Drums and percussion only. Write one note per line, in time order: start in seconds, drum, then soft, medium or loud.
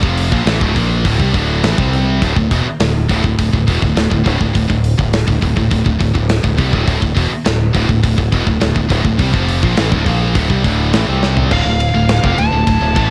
0.03 kick medium
0.17 open hi-hat medium
0.32 kick loud
0.47 snare loud
0.47 open hi-hat medium
0.61 kick loud
0.76 kick medium
0.76 open hi-hat medium
1.05 kick loud
1.05 open hi-hat medium
1.20 kick medium
1.34 kick medium
1.34 open hi-hat soft
1.64 snare medium
1.64 open hi-hat medium
1.78 kick loud
1.93 open hi-hat soft
2.22 kick medium
2.22 open hi-hat medium
2.36 kick medium
2.51 kick medium
2.51 open hi-hat medium
2.80 snare loud
2.80 open hi-hat medium
3.09 kick medium
3.09 open hi-hat medium
3.24 kick medium
3.39 kick medium
3.39 open hi-hat medium
3.53 kick medium
3.68 kick medium
3.68 open hi-hat medium
3.82 kick medium
3.97 snare loud
3.97 open hi-hat medium
4.11 kick medium
4.26 kick medium
4.26 open hi-hat medium
4.41 kick medium
4.55 kick medium
4.55 open hi-hat medium
4.70 kick medium
4.84 open hi-hat medium
4.99 kick medium
5.13 snare loud
5.13 open hi-hat medium
5.28 kick medium
5.42 kick medium
5.42 open hi-hat medium
5.57 kick medium
5.71 kick loud
5.71 open hi-hat medium
5.86 kick medium
6.00 kick medium
6.00 open hi-hat medium
6.15 kick medium
6.29 snare loud
6.29 open hi-hat medium
6.44 kick medium
6.58 kick medium
6.58 open hi-hat medium
6.73 kick medium
6.88 kick medium
6.88 open hi-hat medium
7.02 kick medium
7.17 kick medium
7.17 open hi-hat medium
7.46 snare loud
7.46 open hi-hat medium
7.75 kick medium
7.75 open hi-hat medium
7.89 kick medium
8.04 kick medium
8.04 open hi-hat medium
8.18 kick medium
8.32 kick medium
8.32 open hi-hat soft
8.47 kick medium
8.61 snare medium
8.61 open hi-hat medium
8.76 kick medium
8.90 kick medium
8.90 open hi-hat medium
9.05 kick medium
9.19 kick medium
9.19 open hi-hat medium
9.34 kick medium
9.49 open hi-hat medium
9.63 kick loud
9.77 snare loud
9.77 open hi-hat medium
9.92 kick loud
10.06 kick medium
10.06 open hi-hat medium
10.35 kick loud
10.35 open hi-hat medium
10.50 kick medium
10.64 kick medium
10.64 open hi-hat medium
10.93 snare medium
10.93 open hi-hat medium
11.23 snare medium
11.37 floor tom medium
11.51 kick medium
11.51 crash loud
11.80 ride medium
12.09 snare loud
12.09 ride loud
12.24 kick loud
12.38 ride medium
12.67 kick loud
12.67 ride loud
12.96 kick loud
12.96 ride medium